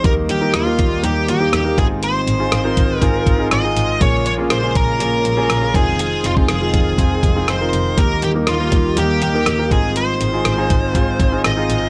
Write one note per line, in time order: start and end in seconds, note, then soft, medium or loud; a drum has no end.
0.04 0.22 D#2 medium
0.04 0.75 D#3 medium
0.04 3.97 D#3 medium
0.04 1.76 G3 medium
0.04 0.38 A#3 medium
0.04 1.76 A#3 medium
0.04 0.38 D#4 medium
0.04 1.76 G4 medium
0.04 0.39 G4 medium
0.04 0.39 A#4 medium
0.04 0.12 A#4 medium
0.04 kick loud
0.04 closed hi-hat medium
0.29 0.47 D#2 medium
0.29 0.53 G4 medium
0.29 closed hi-hat medium
0.41 0.64 A#3 medium
0.41 0.64 D#4 medium
0.41 0.64 G4 medium
0.41 0.64 A#4 medium
0.54 0.72 D#2 medium
0.54 1.05 F4 medium
0.54 cross-stick loud
0.54 closed hi-hat medium
0.65 1.00 A#3 medium
0.65 1.00 D#4 medium
0.65 1.00 G4 medium
0.65 1.01 A#4 medium
0.79 0.97 D#2 medium
0.79 kick medium
0.79 closed hi-hat medium
1.03 1.21 D#2 medium
1.03 1.37 A#3 medium
1.03 1.37 D#4 medium
1.03 1.38 G4 medium
1.03 1.29 G4 medium
1.03 1.38 A#4 medium
1.03 closed hi-hat medium
1.28 1.46 D#2 medium
1.28 1.79 G4 medium
1.28 closed hi-hat medium
1.40 1.62 A#3 medium
1.40 1.63 D#4 medium
1.40 1.63 G4 medium
1.40 1.64 A#4 medium
1.53 1.71 D#2 medium
1.53 cross-stick medium
1.53 closed hi-hat medium
1.64 1.77 A#3 medium
1.64 1.76 D#4 medium
1.64 1.78 G4 medium
1.64 1.78 A#4 medium
1.77 2.14 G#1 medium
1.77 2.48 G#2 medium
1.77 5.70 G#3 medium
1.77 1.83 B3 medium
1.77 3.99 C4 medium
1.77 2.35 D#4 medium
1.77 3.99 F4 medium
1.77 2.35 F4 medium
1.77 2.35 G#4 medium
1.77 1.86 G#4 medium
1.77 kick medium
1.77 closed hi-hat medium
1.83 2.37 C4 medium
2.03 3.00 C5 medium
2.03 closed hi-hat medium
2.27 2.45 G#1 medium
2.27 closed hi-hat medium
2.39 2.62 C4 medium
2.39 2.62 D#4 medium
2.39 2.63 F4 medium
2.39 2.63 G#4 medium
2.52 2.70 G#1 medium
2.52 cross-stick loud
2.52 closed hi-hat medium
2.64 2.99 C4 medium
2.64 2.99 D#4 medium
2.64 2.99 F4 medium
2.64 2.99 A#4 medium
2.77 2.95 G#1 medium
2.77 kick medium
2.77 closed hi-hat medium
3.00 3.19 G#1 medium
3.00 3.36 C4 medium
3.00 3.36 D#4 medium
3.00 3.36 F4 medium
3.00 3.36 G#4 medium
3.00 3.48 A#4 medium
3.00 kick medium
3.00 closed hi-hat medium
3.26 3.44 G#1 medium
3.26 kick medium
3.26 closed hi-hat medium
3.38 3.61 C4 medium
3.38 3.61 D#4 medium
3.38 3.62 F4 medium
3.38 3.62 G#4 medium
3.51 3.69 G#1 medium
3.51 4.01 D#5 medium
3.51 cross-stick medium
3.51 closed hi-hat medium
3.63 3.98 C4 medium
3.63 3.98 D#4 medium
3.63 3.98 F4 medium
3.63 3.98 G#4 medium
3.76 3.94 G#1 medium
3.76 closed hi-hat medium
4.00 4.19 A#1 loud
4.00 4.71 A#2 medium
4.00 5.73 C#3 medium
4.00 4.35 A#3 medium
4.00 5.73 A#3 medium
4.00 4.35 C#4 medium
4.00 7.94 F4 medium
4.00 4.35 F4 medium
4.00 4.35 G#4 medium
4.00 4.25 C#5 medium
4.00 kick loud
4.00 closed hi-hat medium
4.26 4.44 A#1 medium
4.26 4.33 C#5 medium
4.26 closed hi-hat medium
4.38 4.61 A#3 medium
4.38 4.61 C#4 medium
4.38 4.61 F4 medium
4.38 4.61 G#4 medium
4.50 4.68 A#1 medium
4.50 4.74 C5 medium
4.50 cross-stick loud
4.50 closed hi-hat medium
4.63 4.97 A#3 medium
4.63 4.97 C#4 medium
4.63 4.97 F4 medium
4.63 4.98 G#4 medium
4.75 4.93 A#1 medium
4.75 5.75 A#4 medium
4.75 kick medium
4.75 closed hi-hat medium
4.99 5.18 A#1 medium
4.99 5.34 A#3 medium
4.99 5.34 C#4 medium
4.99 5.34 F4 medium
4.99 5.35 G#4 medium
4.99 closed hi-hat medium
5.25 5.43 A#1 medium
5.25 closed hi-hat medium
5.37 5.60 A#3 medium
5.37 5.60 C#4 medium
5.37 5.60 F4 medium
5.37 5.61 G#4 medium
5.50 5.74 A#1 medium
5.50 cross-stick medium
5.50 closed hi-hat medium
5.62 5.74 A#3 medium
5.62 5.74 C#4 medium
5.62 5.73 F4 medium
5.62 5.74 G#4 medium
5.74 6.10 F1 medium
5.74 7.96 D#3 medium
5.74 7.95 G#3 medium
5.74 6.31 C4 medium
5.74 7.96 C4 medium
5.74 6.32 D#4 medium
5.74 6.32 F4 medium
5.74 6.32 G#4 medium
5.74 6.00 G#4 medium
5.74 kick medium
5.74 closed hi-hat medium
5.99 6.26 G#4 medium
5.99 closed hi-hat medium
6.24 6.42 F1 medium
6.24 6.32 F4 medium
6.24 closed hi-hat medium
6.36 6.59 C4 medium
6.36 6.59 D#4 medium
6.36 6.60 F4 medium
6.36 6.60 G#4 medium
6.36 kick medium
6.48 6.67 F1 medium
6.48 7.52 G#4 medium
6.48 cross-stick loud
6.48 closed hi-hat medium
6.61 6.95 C4 medium
6.61 6.96 D#4 medium
6.61 6.96 F4 medium
6.61 6.96 G#4 medium
6.74 6.92 F1 medium
6.74 kick medium
6.74 closed hi-hat medium
6.98 7.16 F1 medium
6.98 7.32 C4 medium
6.98 7.33 D#4 medium
6.98 7.33 F4 medium
6.98 7.33 G#4 medium
6.98 kick medium
6.98 closed hi-hat medium
7.23 7.41 F1 medium
7.23 kick medium
7.23 closed hi-hat medium
7.35 7.58 C4 medium
7.35 7.59 D#4 medium
7.35 7.59 F4 medium
7.35 7.59 G#4 medium
7.48 7.66 F1 medium
7.48 8.00 C5 medium
7.48 cross-stick medium
7.48 closed hi-hat medium
7.60 7.94 C4 medium
7.60 7.95 D#4 medium
7.60 7.95 F4 medium
7.60 7.95 A#4 medium
7.73 7.91 F1 medium
7.73 closed hi-hat medium
7.97 8.15 D#2 loud
7.97 9.69 D#3 medium
7.97 8.68 D#3 medium
7.97 9.69 G3 medium
7.97 9.69 A#3 medium
7.97 8.32 A#3 medium
7.97 8.32 D#4 medium
7.97 9.69 G4 medium
7.97 8.32 G4 medium
7.97 8.32 A#4 medium
7.97 8.21 A#4 medium
7.97 kick loud
7.97 closed hi-hat medium
8.22 8.40 D#2 medium
8.22 8.31 G4 medium
8.22 closed hi-hat medium
8.34 8.57 A#3 medium
8.34 8.58 D#4 medium
8.34 8.58 G4 medium
8.34 8.58 A#4 medium
8.47 8.65 D#2 medium
8.47 8.99 F4 medium
8.47 cross-stick loud
8.47 closed hi-hat medium
8.59 8.94 A#3 medium
8.59 8.94 D#4 medium
8.59 8.94 G4 medium
8.59 8.94 A#4 medium
8.72 8.90 D#2 medium
8.72 kick medium
8.72 closed hi-hat medium
8.96 9.15 D#2 medium
8.96 9.31 A#3 medium
8.96 9.31 D#4 medium
8.96 9.31 G4 medium
8.96 9.21 G4 medium
8.96 9.31 A#4 medium
8.96 closed hi-hat medium
9.22 9.40 D#2 medium
9.22 9.68 G4 medium
9.22 closed hi-hat medium
9.34 9.57 A#3 medium
9.34 9.57 D#4 medium
9.34 9.57 G4 medium
9.34 9.57 A#4 medium
9.46 9.64 D#2 medium
9.46 cross-stick medium
9.46 closed hi-hat medium
9.58 9.71 A#3 medium
9.58 9.70 D#4 medium
9.58 9.71 G4 medium
9.58 9.71 A#4 medium
9.71 10.07 G#1 medium
9.71 10.42 G#2 medium
9.71 11.89 D#3 medium
9.71 11.89 G#3 medium
9.71 10.28 C4 medium
9.71 11.89 C4 medium
9.71 10.28 D#4 medium
9.71 11.89 F4 medium
9.71 10.28 F4 medium
9.71 10.29 G#4 medium
9.71 9.95 G#4 medium
9.71 kick loud
9.71 closed hi-hat medium
9.96 11.41 C5 medium
9.96 closed hi-hat medium
10.21 10.39 G#1 medium
10.21 closed hi-hat medium
10.32 10.55 C4 medium
10.32 10.56 D#4 medium
10.32 10.56 F4 medium
10.32 10.56 G#4 medium
10.45 10.63 G#1 medium
10.45 cross-stick loud
10.45 closed hi-hat medium
10.57 10.92 C4 medium
10.57 10.92 D#4 medium
10.57 10.92 F4 medium
10.57 10.92 G#4 medium
10.70 10.88 G#1 medium
10.70 kick medium
10.70 closed hi-hat medium
10.94 11.13 G#1 medium
10.94 11.29 C4 medium
10.94 11.29 D#4 medium
10.94 11.29 F4 medium
10.94 11.30 G#4 medium
10.94 kick medium
10.94 closed hi-hat medium
11.20 11.38 G#1 medium
11.20 kick medium
11.20 closed hi-hat medium
11.31 11.55 C4 medium
11.31 11.55 D#4 medium
11.31 11.55 F4 medium
11.31 11.55 G#4 medium
11.44 11.62 G#1 medium
11.44 11.89 D#5 medium
11.44 cross-stick medium
11.44 closed hi-hat medium
11.56 11.89 C4 medium
11.56 11.89 D#4 medium
11.56 11.89 F4 medium
11.56 11.89 G#4 medium
11.70 11.87 G#1 medium
11.70 closed hi-hat medium